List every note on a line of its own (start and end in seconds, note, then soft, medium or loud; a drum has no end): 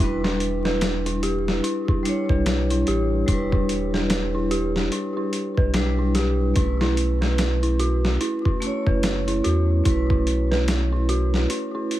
0.00 1.60 E1 medium
0.00 2.00 G3 medium
0.00 2.01 D4 medium
0.00 0.21 E4 medium
0.00 2.02 E4 medium
0.04 2.03 B4 medium
0.24 0.33 E4 medium
0.24 snare medium
0.40 closed hi-hat medium
0.65 0.81 B4 medium
0.65 snare soft
0.81 snare loud
0.81 closed hi-hat medium
1.06 1.21 E4 medium
1.06 closed hi-hat soft
1.23 1.46 G4 medium
1.23 closed hi-hat medium
1.48 snare soft
1.64 1.86 E4 medium
1.64 closed hi-hat medium
1.88 1.98 E4 medium
1.88 kick medium
2.03 3.23 G3 medium
2.03 3.24 D4 medium
2.03 3.25 E4 medium
2.03 closed hi-hat medium
2.09 3.26 C#5 medium
2.29 2.84 B1 medium
2.29 2.45 B4 medium
2.29 kick medium
2.46 snare loud
2.46 closed hi-hat medium
2.70 2.85 E4 medium
2.70 closed hi-hat soft
2.87 3.24 A1 medium
2.87 3.11 G4 medium
2.87 closed hi-hat medium
3.26 4.89 E1 medium
3.26 5.70 G3 medium
3.26 5.71 D4 medium
3.26 3.50 E4 medium
3.26 kick loud
3.26 closed hi-hat medium
3.31 5.72 E4 medium
3.31 5.73 B4 medium
3.52 3.62 E4 medium
3.52 kick medium
3.69 closed hi-hat medium
3.94 4.09 B4 medium
3.94 snare soft
4.10 snare loud
4.10 closed hi-hat medium
4.35 4.49 E4 medium
4.51 4.74 G4 medium
4.51 closed hi-hat medium
4.76 snare soft
4.92 5.14 E4 medium
4.92 closed hi-hat medium
5.17 5.26 E4 medium
5.33 closed hi-hat medium
5.57 6.53 B1 medium
5.57 5.73 B4 medium
5.57 kick medium
5.74 6.52 G3 medium
5.74 6.53 D4 medium
5.74 6.53 E4 medium
5.74 6.54 B4 medium
5.74 snare loud
5.74 closed hi-hat medium
5.99 6.14 E4 medium
6.15 6.39 G4 medium
6.15 snare soft
6.15 closed hi-hat medium
6.54 8.18 B1 medium
6.54 8.57 A3 medium
6.54 8.58 C#4 medium
6.54 6.79 E4 medium
6.54 kick loud
6.54 closed hi-hat medium
6.58 8.59 E4 medium
6.58 8.60 B4 medium
6.81 6.90 E4 medium
6.81 snare medium
6.97 closed hi-hat medium
7.21 7.38 B4 medium
7.21 snare soft
7.38 snare loud
7.38 closed hi-hat medium
7.63 7.78 E4 medium
7.63 closed hi-hat soft
7.80 8.03 F#4 medium
7.80 closed hi-hat medium
8.05 snare soft
8.21 8.43 E4 medium
8.21 closed hi-hat medium
8.45 8.55 E4 medium
8.45 kick medium
8.60 9.80 A3 medium
8.60 9.82 C#4 medium
8.60 9.82 E4 medium
8.60 closed hi-hat medium
8.66 9.84 C#5 medium
8.87 9.41 F#1 medium
8.87 9.02 B4 medium
8.87 kick medium
9.03 snare loud
9.03 closed hi-hat medium
9.28 9.43 E4 medium
9.28 closed hi-hat soft
9.44 9.82 E2 loud
9.44 9.67 F#4 medium
9.44 closed hi-hat medium
9.84 11.47 B1 loud
9.84 12.00 A3 medium
9.84 12.00 C#4 medium
9.84 10.07 E4 medium
9.84 kick loud
9.84 closed hi-hat medium
9.88 12.00 E4 medium
9.88 12.00 B4 medium
10.10 10.20 E4 medium
10.10 kick medium
10.27 closed hi-hat medium
10.51 10.67 B4 medium
10.51 snare soft
10.68 snare loud
10.68 closed hi-hat medium
10.92 11.07 E4 medium
11.09 11.32 F#4 medium
11.09 closed hi-hat medium
11.34 snare soft
11.50 11.72 E4 medium
11.50 closed hi-hat medium
11.75 11.84 E4 medium
11.91 closed hi-hat medium